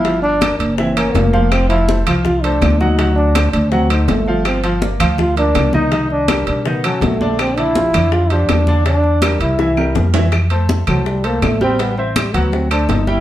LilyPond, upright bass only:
\new Staff \with { instrumentName = "Upright bass" } { \clef bass \time 4/4 \key g \dorian \tempo 4 = 164 g,,4. fis,,4. f,,4~ | f,,4. c,4. d,4~ | d,4. d,4. g,,4~ | g,,4. d,4. c,4~ |
c,4. b,,4. bes,,4~ | bes,,4. f,4. e,4~ | e,4. c,4. f,4~ | \key f \major f,4. c,4. a,,4~ |
a,,4. d,4. g,,4 | }